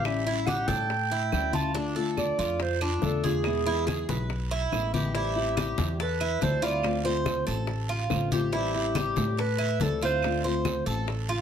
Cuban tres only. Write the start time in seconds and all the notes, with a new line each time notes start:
Already playing: G4
0.27 E4
0.48 G4
0.68 A4
1.12 E4
1.53 F4
1.74 D4
1.96 A4
2.39 F4
2.81 D4
3.24 G#4
3.66 E4
3.87 G#4
4.09 B4
4.51 E4
4.94 G4
5.15 E4
5.57 G4
6.00 A4
6.21 E4
6.42 A4
6.62 F4
7.05 C5
7.47 A4
7.89 F4
8.32 G4
8.53 E4
8.96 G4
9.38 A4
9.58 E4
9.81 A4
10.02 F4
10.44 C5
10.86 A4
11.29 F4